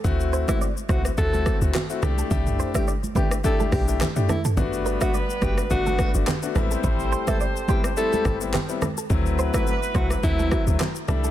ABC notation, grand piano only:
X:1
M:4/4
L:1/16
Q:"Swing 16ths" 1/4=106
K:Dmix
V:1 name="Grand piano"
[A,CEF]3 [A,CEF] z2 [A,CEF] z [A,CEF]3 [A,CEF] z [A,CEF] [A,DEG]2 | [A,DEG]3 [A,DE] z2 [A,DEG] z [A,DEG]3 [A,DEG] z [A,DEG] z2 | [A,B,DF]3 [A,B,DF] z2 [A,B,DF] z [A,B,DF]3 [A,B,DF] z [A,B,DF] [G,B,CE]2 | [G,A,CE]3 [G,B,CE] z2 [G,B,CE] z [G,A,CE]3 [G,B,CE] z [G,B,CE] z2 |
[F,A,CE]3 [F,A,CE] z2 [F,A,CE] z [F,A,CE]3 [F,A,CE] z2 [G,A,DE]2 |]